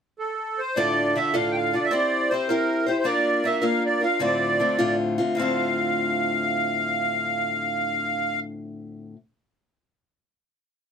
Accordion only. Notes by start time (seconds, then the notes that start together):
0.19 A4
0.58 C5
0.76 D5
1.16 E5
1.34 F5
1.51 G5
1.55 F5
1.74 D5
1.85 E5
1.90 D5
2.30 C5
2.49 A#4
2.88 C5
2.99 C5
3.05 D5
3.45 E5
3.64 F5
3.85 D5
4.03 F5
4.22 D5
5.36 F5